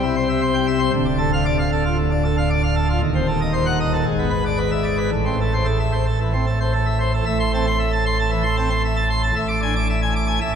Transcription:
0.00 0.90 C2 medium
0.00 0.90 C3 loud
0.00 0.15 E4 medium
0.16 0.28 C5 medium
0.29 0.41 E5 medium
0.42 0.54 C5 medium
0.54 0.66 G5 medium
0.68 0.79 E5 medium
0.79 0.91 C5 medium
0.93 2.97 D1 loud
0.93 2.97 D2 medium
1.05 1.18 D4 medium
1.19 1.31 A4 medium
1.33 1.45 F5 loud
1.46 1.57 D5 medium
1.59 1.70 F5 medium
1.72 1.84 A4 medium
1.85 1.97 F4 medium
1.98 2.10 A2 medium
2.12 2.23 D4 medium
2.24 2.36 A4 medium
2.38 2.49 F5 medium
2.50 2.62 D5 medium
2.63 2.75 F5 medium
2.75 2.87 A4 medium
2.90 3.01 F4 medium
3.02 4.03 D#1 medium
3.02 4.03 D#2 medium
3.15 3.27 C4 medium
3.28 3.40 A4 medium
3.41 3.53 D#5 medium
3.54 3.66 C5 medium
3.66 3.78 F#5 loud
3.80 3.92 D#5 medium
3.93 4.05 A4 medium
4.06 5.10 G#1 medium
4.06 5.10 G#2 medium
4.19 4.31 B3 medium
4.30 4.43 B4 medium
4.46 4.58 D5 medium
4.58 4.70 B4 medium
4.72 4.84 E5 medium
4.83 4.97 D5 medium
4.98 5.10 B4 medium
5.12 7.21 A1 medium
5.12 7.21 A2 medium
5.26 5.38 C4 medium
5.41 5.53 A4 medium
5.54 5.66 C5 medium
5.65 5.78 A4 medium
5.80 5.92 E5 loud
5.92 6.05 C5 medium
6.06 6.18 A4 medium
6.21 6.32 E3 medium
6.33 6.45 C4 medium
6.47 6.59 A4 medium
6.60 6.72 C5 medium
6.74 6.85 A4 medium
6.86 6.98 E5 medium
7.00 7.12 C5 medium
7.14 7.25 A4 medium
7.26 9.31 A1 medium
7.26 9.31 A2 medium
7.26 7.38 E5 medium
7.40 7.51 C6 loud
7.54 7.65 C4 medium
7.54 7.65 A5 medium
7.67 7.78 C6 medium
7.79 7.91 E5 medium
7.93 8.04 A5 medium
8.06 8.17 C6 medium
8.20 8.31 A5 medium
8.31 8.43 E3 medium
8.31 8.43 E5 medium
8.43 8.55 C6 medium
8.57 8.69 C4 medium
8.57 8.69 A5 medium
8.70 8.82 C6 medium
8.85 8.96 E5 medium
8.97 9.08 A5 medium
9.10 9.21 C6 medium
9.24 9.34 A5 medium
9.36 10.39 A1 medium
9.36 10.39 A2 medium
9.36 9.47 E5 medium
9.48 9.60 D6 loud
9.62 9.74 D4 medium
9.62 9.74 G#5 medium
9.76 9.87 D6 medium
9.90 10.00 E5 medium
10.02 10.13 G#5 medium
10.16 10.26 D6 medium
10.28 10.39 G#5 medium
10.41 10.55 A1 medium
10.41 10.55 A2 medium
10.41 10.52 E5 medium

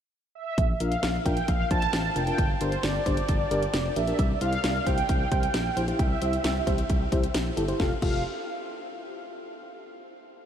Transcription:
0.35 0.82 E5 loud
0.58 0.74 A#1 loud
0.58 kick loud
0.58 closed hi-hat medium
0.80 0.96 A#1 medium
0.80 0.92 D4 medium
0.80 0.92 F4 medium
0.80 0.92 A#4 medium
0.80 1.22 F5 loud
0.80 closed hi-hat medium
0.92 closed hi-hat medium
1.03 1.19 A#1 loud
1.03 snare loud
1.03 closed hi-hat medium
1.25 1.41 A#1 loud
1.25 1.38 D4 medium
1.25 1.38 F4 medium
1.25 1.38 A#4 medium
1.25 1.49 G5 loud
1.25 kick medium
1.25 closed hi-hat medium
1.37 closed hi-hat soft
1.48 1.64 A#1 loud
1.48 1.69 F5 loud
1.48 kick medium
1.48 closed hi-hat medium
1.71 1.87 A#1 loud
1.71 1.83 D4 medium
1.71 1.83 F4 medium
1.71 1.83 C5 medium
1.71 2.17 A5 loud
1.71 kick medium
1.71 closed hi-hat medium
1.82 closed hi-hat medium
1.93 2.09 A1 medium
1.93 snare loud
1.93 closed hi-hat medium
2.16 2.32 F1 loud
2.16 2.22 D4 medium
2.16 2.22 F4 medium
2.16 2.22 A#4 medium
2.16 2.58 G5 loud
2.16 closed hi-hat medium
2.27 2.38 D4 medium
2.27 2.38 F4 medium
2.27 2.38 A#4 medium
2.27 closed hi-hat medium
2.38 2.54 G1 loud
2.38 kick loud
2.38 closed hi-hat medium
2.61 2.77 G1 loud
2.61 2.73 D4 medium
2.61 2.73 G4 medium
2.61 2.73 A#4 medium
2.61 2.82 C5 medium
2.61 closed hi-hat medium
2.72 closed hi-hat medium
2.83 2.99 G1 loud
2.83 4.00 D5 loud
2.83 snare loud
2.83 closed hi-hat medium
3.06 3.22 G1 loud
3.06 3.18 D4 medium
3.06 3.18 G4 medium
3.06 3.18 C5 medium
3.06 kick medium
3.06 closed hi-hat medium
3.17 closed hi-hat medium
3.29 3.45 G1 loud
3.29 kick medium
3.29 closed hi-hat medium
3.51 3.67 G1 loud
3.51 3.63 D4 medium
3.51 3.63 G4 medium
3.51 3.63 A#4 loud
3.51 closed hi-hat medium
3.63 closed hi-hat medium
3.74 3.89 F1 loud
3.74 snare loud
3.74 closed hi-hat medium
3.96 4.12 A#1 medium
3.96 4.02 D4 medium
3.96 4.02 G4 medium
3.96 4.02 A#4 medium
3.96 4.38 E5 loud
3.96 closed hi-hat medium
4.07 4.19 D4 medium
4.07 4.19 G4 medium
4.07 4.19 A#4 medium
4.07 closed hi-hat medium
4.19 4.35 C2 loud
4.19 kick loud
4.19 closed hi-hat medium
4.41 4.57 C2 loud
4.41 4.53 E4 medium
4.41 4.53 G4 medium
4.41 4.53 C5 medium
4.41 4.88 F5 loud
4.41 closed hi-hat medium
4.53 closed hi-hat medium
4.64 4.80 C2 loud
4.64 snare loud
4.64 closed hi-hat medium
4.86 5.02 C2 loud
4.86 4.99 E4 medium
4.86 4.98 G4 medium
4.86 4.99 C5 medium
4.86 5.08 G5 loud
4.86 kick medium
4.86 closed hi-hat medium
4.98 closed hi-hat soft
5.09 5.25 C2 loud
5.09 6.02 G5 loud
5.09 kick medium
5.09 closed hi-hat medium
5.32 5.47 C2 medium
5.32 5.44 E4 medium
5.32 5.44 G4 medium
5.32 5.44 C5 medium
5.32 kick medium
5.32 closed hi-hat medium
5.43 closed hi-hat medium
5.54 5.70 A#1 medium
5.54 snare loud
5.54 closed hi-hat medium
5.77 5.93 A#1 medium
5.77 5.83 E4 medium
5.77 5.83 G4 medium
5.77 5.83 C5 medium
5.77 closed hi-hat medium
5.88 6.00 E4 medium
5.88 6.00 G4 medium
5.88 6.00 C5 medium
5.88 closed hi-hat medium
5.99 6.15 C2 loud
5.99 7.31 E5 loud
5.99 kick loud
5.99 closed hi-hat medium
6.22 6.38 C2 loud
6.22 6.34 E4 medium
6.22 6.34 G4 medium
6.22 6.34 C5 medium
6.22 closed hi-hat medium
6.33 closed hi-hat medium
6.44 6.60 C2 loud
6.44 snare loud
6.44 closed hi-hat medium
6.67 6.83 C2 loud
6.67 6.79 E4 medium
6.67 6.79 G4 medium
6.67 6.79 C5 medium
6.67 kick medium
6.67 closed hi-hat medium
6.78 closed hi-hat medium
6.90 7.05 C2 loud
6.90 kick medium
6.90 closed hi-hat medium
7.12 7.28 C2 medium
7.12 7.24 E4 medium
7.12 7.24 G4 medium
7.12 7.24 C5 medium
7.12 kick medium
7.12 closed hi-hat medium
7.24 closed hi-hat medium
7.34 7.50 A#1 medium
7.34 snare loud
7.34 closed hi-hat medium
7.57 7.73 G1 loud
7.57 7.63 E4 medium
7.57 7.63 G4 medium
7.57 7.63 A4 medium
7.57 closed hi-hat medium
7.68 7.80 E4 medium
7.68 7.78 G4 medium
7.68 7.80 C5 medium
7.68 closed hi-hat medium
7.80 7.92 F1 loud
7.80 7.92 F4 medium
7.80 7.92 G4 medium
7.80 7.92 A4 medium
7.80 7.92 F5 medium
7.80 kick loud
7.80 snare medium
8.02 8.23 F1 loud
8.02 8.23 F4 medium
8.02 8.23 G4 medium
8.02 8.23 A4 medium
8.02 8.23 F5 medium
8.02 kick loud
8.02 crash medium

